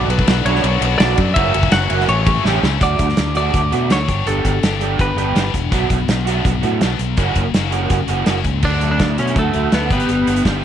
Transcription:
Already playing: F#3 B3 D4 A4 F#5 B5
0.08 B1 B3 D4 F#4 B4, muted overdriven electric guitar stroke, ride
0.19 kick
0.27 B1 F#3 B3 D4 F#4, muted overdriven electric guitar stroke, snare, ride
0.45 B1 F#3 B3 D4 F#4 C#5, ride
0.55 snare
0.64 B1, muted overdriven electric guitar stroke, ride
0.81 B1, muted overdriven electric guitar stroke, ride
0.98 B1 F#3 B3 D4 F#4 D5, snare, ride
1.17 F#2 B3 D4 F#4, muted overdriven electric guitar stroke, kick, ride
1.34 F#1 E3 A#3 C#4 F#4 C#5 E5 A#5, kick, ride
1.38 F#4
1.53 F#1 C#4 F#4, muted overdriven electric guitar stroke, ride
1.63 kick
1.71 F#1 A#3 C#4 F#4 F#5, muted overdriven electric guitar stroke, snare, ride
1.90 F#1 E3 A#3 C#4 F#4, ride
2.00 snare
2.08 A1 E3 A3 C#4 G4 C#5 E5 A5, muted overdriven electric guitar stroke, ride
2.26 muted overdriven electric guitar stroke, kick, ride
2.44 A1 E3 G3 A3 C#4 G4, snare
2.62 C#2 A3 C#4, muted overdriven electric guitar stroke, snare
2.80 D2 F#3 A3 D4 F#4 D5, kick, closed hi-hat
2.99 D2 A3 D4, kick, closed hi-hat
3.09 snare
3.17 D2 A3 D4, snare, closed hi-hat
3.35 F#3 A3 D4 F#4 D5, closed hi-hat
3.54 D2 A3 D4, kick, closed hi-hat
3.71 B2 F#3 A3 D4 F#4, closed hi-hat
3.90 D2 A3 D4 F#4 C#5, snare, closed hi-hat
4.08 G1 B3 D4 G4, kick, closed hi-hat
4.26 G1 G3 B3 D4 G4 A4, closed hi-hat
4.44 G1 B3 D4, kick, closed hi-hat
4.63 G1 B3 D4 G4, snare, closed hi-hat
4.81 G3 B3 D4 G4, closed hi-hat
4.99 G1 B3 D4 B4, kick, closed hi-hat
5.16 G1 G3 B3 D4 G4, closed hi-hat
5.35 G1 B3 D4 G4, snare, closed hi-hat
5.53 E1 B3 D4, kick, closed hi-hat
5.72 B1 F#3 B3 D4 F#4, kick, closed hi-hat
5.90 B1 F#3 B3, kick, closed hi-hat
6.08 B1 F#3 B3, snare, closed hi-hat
6.25 F#3 B3 D4 F#4, closed hi-hat
6.45 B1 F#3 B3, kick, closed hi-hat
6.62 A2 F#3 B3 D4 F#4, closed hi-hat
6.81 B1 F#3 B3 D4, snare, closed hi-hat
6.99 B1 F#3 B3, closed hi-hat
7.17 F#1 E3 A#3 C#4 F#4, kick, closed hi-hat
7.35 F#1 A#3 C#4, kick, closed hi-hat
7.54 F#1 A#3 C#4 F#4, snare, closed hi-hat
7.71 E3 A#3 C#4 F#4, closed hi-hat
7.90 F#1 A#3 C#4, kick, closed hi-hat
8.08 F#1 E3 A#3 C#4 F#4, closed hi-hat
8.26 F#1 A#3 C#4 F#4, snare, closed hi-hat
8.44 C#2 A#3 C#4, kick, closed hi-hat
8.63 D2 D3 F#3 A3 D4, kick, crash
8.81 F#3 A3, closed hi-hat
8.91 D4
8.99 D2 D3 F#3 A3, kick, snare, closed hi-hat
9.18 B2 F#3 A3 C#4, closed hi-hat
9.27 closed hi-hat
9.36 D2 F#3 A3 F#4, kick, closed hi-hat
9.53 D2 F#3 A3, closed hi-hat
9.72 D2 D3 F#3 A3 B3 D4, snare, closed hi-hat
9.90 G1 G3 B3 D4 G4, kick, closed hi-hat
10.00 closed hi-hat
10.09 G1 G3 B3 D4, closed hi-hat
10.27 G1 B3 D4, closed hi-hat
10.36 closed hi-hat
10.45 G1 G3 B3 D4, kick, snare, closed hi-hat

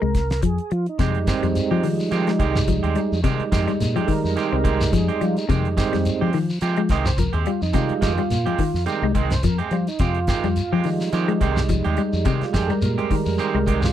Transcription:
Already playing: A#4
0.02 C2 G#3
0.15 kick, snare, closed hi-hat
0.30 snare, closed hi-hat
0.42 F2 F3 G#4, kick, closed hi-hat
0.58 closed hi-hat
0.71 F3 F4, muted clean electric guitar stroke, closed hi-hat
0.86 D#4, closed hi-hat
0.99 F2 C3 G3 G#3 C4 D#4 G4, muted clean electric guitar stroke, kick, snare, closed hi-hat, shekere
1.15 closed hi-hat
1.27 D#3 G#3 C4 G4, kick, snare, closed hi-hat, shekere
1.43 F2 G3, closed hi-hat, shekere
1.55 closed hi-hat, shekere
1.71 F3 G#3 C4 G4
1.83 D#3, open hi-hat, shekere
2.00 shekere
2.11 D#3 F3 G#3 C4 G4, closed hi-hat, shekere
2.27 G#3, snare, closed hi-hat
2.39 C2 D#3 G#3 G4, kick, closed hi-hat, shekere
2.56 snare, shekere
2.68 F3, kick, closed hi-hat, shekere
2.83 D#2 G#3 C4 G4, closed hi-hat
2.95 G3, closed hi-hat, shekere
3.12 F2, shekere
3.23 C3 D#3 G3 G#3 C4 D#4 G4, kick, closed hi-hat, shekere
3.40 muted fingered electric bass stroke, closed hi-hat
3.52 F2 D#3 G#3 C4 G4, kick, snare, closed hi-hat, shekere
3.68 G3, closed hi-hat, shekere
3.80 A#2, snare, closed hi-hat, shekere
3.96 F3 G#3 C4 G4, closed hi-hat
4.05 D#3 A4, muted fingered electric bass stroke, kick, open hi-hat
4.10 A#4, shekere
4.24 F2, shekere
4.36 D#3 G#3 C4 G4, closed hi-hat, shekere
4.53 C2 C4
4.64 D#3 G#3 C4 G4, kick, closed hi-hat, shekere
4.81 snare, closed hi-hat, shekere
4.93 F2 F3 G#4, kick, closed hi-hat, shekere
5.08 G#3 C4 G4, closed hi-hat
5.21 F3 G3 F4, closed hi-hat, shekere
5.37 D#4, closed hi-hat, shekere
5.49 F2 C3 D#3 G3 G#3 C4 D#4 G4, kick, closed hi-hat, shekere
5.65 closed hi-hat
5.77 D#3 G3 G#3 C4 G4, kick, snare, closed hi-hat, shekere
5.93 F2 G3, snare, closed hi-hat, shekere
6.05 closed hi-hat, shekere
6.21 F3 G#3 C4 G4
6.33 D#3, open hi-hat, shekere
6.50 shekere
6.61 F3 G#3 C4 G4, muted clean electric guitar stroke, closed hi-hat, shekere
6.76 G#3, closed hi-hat
6.89 C2 D#3 G#3 C4 G4 D#5, kick, snare, closed hi-hat, shekere
7.05 C5, snare, shekere
7.18 F3 A#4, kick, closed hi-hat, shekere
7.33 D#2 G#3 C4 G4 G#4, closed hi-hat
7.46 G3 F4, closed hi-hat, shekere
7.62 F2 D#4, shekere
7.73 C3 D#3 G3 G#3 C4 D#4 F4 G4, kick, closed hi-hat, shekere
7.89 muted fingered electric bass stroke, closed hi-hat
8.01 F2 D#3 G#3 C4 G4, kick, snare, closed hi-hat, shekere
8.18 G3, closed hi-hat, shekere
8.30 A#2, snare, closed hi-hat, shekere
8.46 F3 G#3 C4 G4, closed hi-hat
8.58 D#3, muted fingered electric bass stroke, kick, open hi-hat, shekere
8.74 F2, snare, shekere
8.86 D#3 G3 G#3 C4 D#4 G4, muted clean electric guitar stroke, closed hi-hat, shekere
9.02 C2 G#3
9.15 D#3 G#3 C4 D#5, muted clean electric guitar stroke, kick, closed hi-hat, shekere
9.30 C5, snare, closed hi-hat, shekere
9.43 F2 F3 A#4, kick, closed hi-hat, shekere
9.58 G#3 C4 G4 G#4, closed hi-hat
9.71 F3 G3 F4, closed hi-hat, shekere
9.87 D#4, closed hi-hat, shekere
9.99 F2 C3 G#3 C4 F4 G4, muted clean electric guitar stroke, kick, closed hi-hat, shekere
10.15 closed hi-hat
10.27 D#3 G#3 C4 G4, kick, snare, closed hi-hat, shekere
10.44 F2 G3, closed hi-hat, shekere
10.56 closed hi-hat, shekere
10.73 F3 G#3 C4 G4
10.84 D#3 G3 G#3 D#4, open hi-hat, shekere
11.00 snare, shekere
11.13 D#3 F3 G#3 C4 G4, closed hi-hat, shekere
11.28 G#3, closed hi-hat
11.41 C2 D#3 G#3 C4 G4, kick, closed hi-hat, shekere
11.57 snare, shekere
11.69 F3, kick, closed hi-hat, shekere
11.84 D#2 G#3 C4 G4, closed hi-hat
11.97 G3, closed hi-hat, shekere
12.13 F2, shekere
12.25 C3 D#3 G3 G#3 C4 D#4 G4, kick, closed hi-hat, shekere
12.41 F4, muted fingered electric bass stroke, snare, closed hi-hat
12.53 F2 D#3 C4 G4 G#4, kick, snare, closed hi-hat, shekere
12.66 G3 A4, closed hi-hat, shekere
12.71 A#4
12.82 A#2, closed hi-hat, shekere
12.98 G#3 C4 G4, muted clean electric guitar stroke, closed hi-hat
13.10 D#3, muted fingered electric bass stroke, kick, open hi-hat, shekere
13.26 F2, shekere
13.38 D#3 G#3 C4 G4, closed hi-hat, shekere
13.54 C2 G#3
13.66 D#3 G#3 C4 G4, kick, closed hi-hat, shekere
13.82 F4, snare, closed hi-hat, shekere

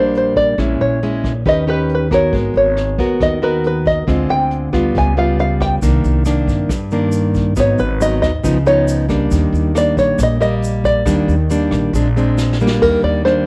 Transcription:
Already playing: A#1 A#2 G3 A#3 D4 C5
0.15 C5, closed hi-hat
0.36 D5, kick, closed hi-hat
0.58 A#1 A#2 G#3 C#4 E4, kick, cross-stick, closed hi-hat
0.80 A#1 C#5, closed hi-hat
1.02 G#3 C#4 E4, closed hi-hat
1.24 A#1, kick, cross-stick, closed hi-hat
1.45 D#2 D#3 C#4 G4 B4 D#5, kick, closed hi-hat
1.67 C#4 G4 B4, closed hi-hat
1.89 closed hi-hat
1.95 B4
2.11 B3 F#4 A#4 C#5, kick, cross-stick, closed hi-hat
2.33 G#1 G#3, kick, closed hi-hat
2.54 G#1 C#5, closed hi-hat
2.77 cross-stick, closed hi-hat
2.98 D#2 B3 F#4 A#4, kick, closed hi-hat
3.20 D#2 D#3 D#5, kick, cross-stick, closed hi-hat
3.42 B3 F#4 A#4 B4, closed hi-hat
3.64 B4, closed hi-hat
3.85 D#5, kick, closed hi-hat
4.07 D2 D3 G#3 C4 F4, kick, cross-stick, closed hi-hat
4.29 D2 G5, closed hi-hat
4.51 closed hi-hat
4.73 D2 G3 B3 F4, kick, cross-stick, closed hi-hat
4.95 C#2 C#3 G#5, kick, closed hi-hat
5.17 G3 B3 F4 F5, closed hi-hat
5.39 F5, closed hi-hat
5.60 G5, kick, cross-stick, closed hi-hat
5.82 C2 C3 D#3 A#3 D4, kick, closed hi-hat, shaker
6.04 C2, closed hi-hat, shaker
6.25 D#3 A#3 D4, cross-stick, closed hi-hat, shaker
6.47 G2, kick, closed hi-hat, shaker
6.69 G2, kick, cross-stick, closed hi-hat, shaker
6.91 D#3 A#3 D4, closed hi-hat, shaker
7.12 closed hi-hat, shaker
7.35 kick, closed hi-hat, shaker
7.56 G#1 G#2 F#3 B3 D#4 C#5, kick, cross-stick, closed hi-hat, shaker
7.78 G#1 B4, closed hi-hat, shaker
8.01 F#3 B3 D#4 D#5, closed hi-hat, shaker
8.22 D#2 D#5, kick, cross-stick, closed hi-hat, shaker
8.44 C#2 C#3 F3 B3 D#4, kick, closed hi-hat, shaker
8.66 F3 B3 D#4 C#5, closed hi-hat, shaker
8.88 closed hi-hat, shaker
9.09 G3 A#3 D4, kick, cross-stick, closed hi-hat, shaker
9.31 D#2 D#3, kick, closed hi-hat, shaker
9.53 D#2, closed hi-hat, shaker
9.75 G3 A#3 D4 D5, cross-stick, closed hi-hat, shaker
9.97 A#1 C#5, kick, closed hi-hat, shaker
10.18 A#1 A#2, kick, cross-stick, closed hi-hat, shaker
10.23 D#5
10.41 G3 A#3 D#5, closed hi-hat, shaker
10.62 closed hi-hat, shaker
10.84 D5, kick, closed hi-hat, shaker
11.06 D#2 D#3 G3 A#3 D4, kick, cross-stick, closed hi-hat, shaker
11.28 D#2, closed hi-hat, shaker
11.49 G3 A#3 D4, closed hi-hat, shaker
11.71 A#1, kick, cross-stick, closed hi-hat, shaker
11.93 A#1 A#2 G#3 C4 D4, kick, closed hi-hat, shaker
12.16 G#3 C4 D4, closed hi-hat, shaker
12.37 snare, shaker
12.53 snare
12.60 G3 A#3 D4, shaker
12.67 snare
12.82 D#2 D#3 A#4, kick, crash
13.03 D#2 D5, closed hi-hat
13.25 G3 A#3 D4 C5, cross-stick, closed hi-hat

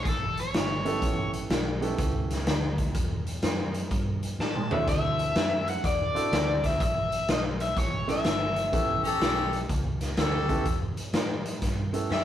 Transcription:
0.03 A1 G#4, kick, snare, closed hi-hat
0.08 A4
0.37 C#5, closed hi-hat
0.53 G1, snare, closed hi-hat
0.85 B3 C#4 E4 G4 A4, closed hi-hat
1.02 A1, kick, closed hi-hat
1.33 closed hi-hat
1.49 B1, snare, closed hi-hat
1.81 B3 C#4 E4 G4 A4, closed hi-hat
1.98 C#2, kick, closed hi-hat
2.31 snare, closed hi-hat
2.46 D2, snare, closed hi-hat
2.78 kick, closed hi-hat
2.95 E2, kick, closed hi-hat
3.27 closed hi-hat
3.42 F#2, snare, closed hi-hat
3.74 closed hi-hat
3.91 G2, kick, closed hi-hat
4.23 closed hi-hat
4.39 A2 A5, snare
4.55 mid tom
4.70 C4 D4 E4 F#4 A4 E5, floor tom
4.87 D2 E5, kick, closed hi-hat, splash
5.19 closed hi-hat
5.36 F#2, snare, closed hi-hat
5.68 F#5, closed hi-hat
5.84 E2 D5, kick, snare, closed hi-hat
6.14 C4 D4 E4 F#4 A4, muted fingered electric bass stroke, closed hi-hat
6.32 D2, snare, closed hi-hat
6.64 E5, kick, snare, closed hi-hat
6.80 A1 E5, kick, closed hi-hat
7.12 closed hi-hat
7.28 B1 D#5, snare, closed hi-hat
7.60 E5, closed hi-hat
7.77 A1 C#5, kick, snare, closed hi-hat
8.07 B3 C#4 E4 G4 A4 E5, snare, closed hi-hat
8.24 G1, snare, closed hi-hat
8.56 closed hi-hat
8.72 A1 B3 C#4 E4 G4 A4, kick, closed hi-hat
9.04 C#4 G4 A4, closed hi-hat
9.21 B1, snare, closed hi-hat
9.53 closed hi-hat
9.69 C#2, kick, closed hi-hat
10.01 snare, closed hi-hat
10.17 D2 C#4 G4 A4, snare, closed hi-hat
10.49 B3 C#4 E4 G4 A4, kick, closed hi-hat
10.65 E2, kick, closed hi-hat
10.96 muted fingered electric bass stroke, closed hi-hat
11.13 A2, snare, closed hi-hat
11.46 closed hi-hat
11.62 G2, kick, snare, closed hi-hat
11.93 B3 C#4 E4 G4 A4, closed hi-hat
12.10 F#2 C#4 G4 A4 E5, snare

